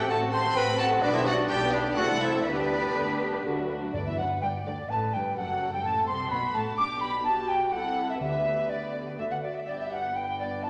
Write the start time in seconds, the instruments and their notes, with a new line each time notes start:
Already playing: cor anglais G4
0.08 double bass section A1, viola section C3 C4, violin section A3 F#4 A5, french horn section C4, cello section F#4, clarinet A4, cor anglais A4, flute F#5
0.22 viola section C3 A3, violin section C4 A4
0.32 viola section C3 C4, violin section A3 F#4 C6, clarinet C5, cor anglais C5, flute A5
0.45 viola section C3 A3, violin section C4 A4
0.55 double bass section A1, viola section C3 C4, violin section A3 F#4 B5, cello section F#4, clarinet B4, cor anglais B4, flute G5
0.68 viola section C3 A3, violin section C4 A4
0.79 viola section C3 C4, violin section A3 F#4 A5, clarinet A4, cor anglais A4, flute F#5
0.92 viola section C3 A3, violin section C4 A4
1.02 double bass section B1, viola section G3, french horn section B3 D4, clarinet D4, cor anglais D4, violin section D4 D5, flute B4
1.14 viola section D3 B3, violin section B3 G4 E5, clarinet E4, cor anglais E4, flute C5
1.26 viola section G3, violin section D4 F#5, clarinet F#4, cor anglais F#4, flute D5
1.38 viola section D3 B3, violin section B3 G4
1.49 double bass section B1, viola section G3, french horn section B3 D4, violin section D4 G5, clarinet G4, cor anglais G4, cello section G4, flute D5
1.61 viola section D3 B3, violin section B3 G4
1.72 viola section G3, clarinet D4, cor anglais D4, violin section D4 D5, flute B4
1.85 viola section D3 B3, violin section B3 G4
1.97 double bass section C2, viola section A3, french horn section A3 E4, violin section C4 F#5, clarinet F#4, cor anglais F#4, cello section A4, flute D5
2.08 viola section E3 C4, violin section A3 E4
2.21 viola section A3, violin section C4 E5, clarinet E4, cor anglais E4, flute C5
2.34 viola section E3 C4, violin section A3 E4
2.45 double bass section D2, viola section D3 B3, french horn section B3 G4, clarinet D4, cor anglais D4, violin section D4 G4 D5, cello section B4, flute B4
2.58 viola section G3 D4, violin section D4 G4
2.70 viola section D3 B3, violin section D4 G4
2.82 viola section G3 D4, violin section D4 G4
2.94 double bass section D2, viola section D3 B3, violin section D4 G4
3.07 viola section G3 D4, violin section D4 G4
3.20 viola section D3 B3, violin section D4 G4
3.32 viola section G3 D4, violin section D4 G4
3.45 double bass section D2, viola section D3 A3, french horn section A3 F#4, violin section D4 F#4
3.58 viola section F#3, violin section D4 F#4
3.69 viola section D3 A3, violin section D4 F#4
3.82 viola section F#3, violin section D4 F#4
3.93 double bass section D2, cello section D2, timpani G2, viola section D3, violin section B4 D5, flute D5
4.06 cello section E2, viola section E3, flute E5, violin section E5
4.17 double bass section F#1, cello section F#2, viola section F#3, flute F#5, violin section F#5
4.41 double bass section G1, cello section G2, viola section G3, violin section D5 G5, flute G5
4.66 cello section D2, double bass section D2, viola section D3, flute D5, violin section D5
4.89 double bass section A1, cello section A2, viola section A3, violin section B4 A5, flute A5
5.13 double bass section G1, cello section G2, viola section G3, flute G5, violin section G5
5.36 double bass section F#1, cello section F#2, viola section F#3, violin section A4 F#5, flute F#5
5.72 cello section G2, viola section G3, violin section G5, flute G5
5.83 double bass section A1, cello section A2, viola section A3, flute A5, violin section A5
6.07 double bass section C2, cello section C3, viola section C4, flute C6, violin section C6
6.30 double bass section B1, cello section B2, viola section B3, violin section F#4 B5, flute B5
6.54 double bass section A1, cello section A2, viola section A3, violin section A5, flute A5
6.77 double bass section B1, cello section B2, viola section D4 G4, violin section G4 D6, flute D6
7.01 flute B5, violin section B5
7.24 viola section F#4, violin section G4 A5, flute A5
7.49 flute G5, violin section G5
7.71 double bass section C2, cello section C3, viola section E4 A4, violin section A4 F#5, flute F#5
8.10 violin section E5, flute E5
8.20 double bass section D2, cello section D3, timpani D3, viola section B3 G4, violin section B4 E5, flute E5
8.70 flute D5, violin section D5
9.18 double bass section D2, cello section D3, viola section A3 F#4, violin section E5, flute E5
9.31 violin section F#5, flute F#5
9.43 flute D5, violin section D5
9.56 violin section E5, flute E5
9.67 double bass section G1, cello section G2, viola section B3 D4, violin section G4 D5, flute D5
9.80 violin section E5, flute E5
9.92 violin section F#5, flute F#5
10.15 viola section B3 D4, violin section B4 G5, flute G5
10.39 flute D5, violin section D5
10.63 viola section E4, flute A5, violin section A5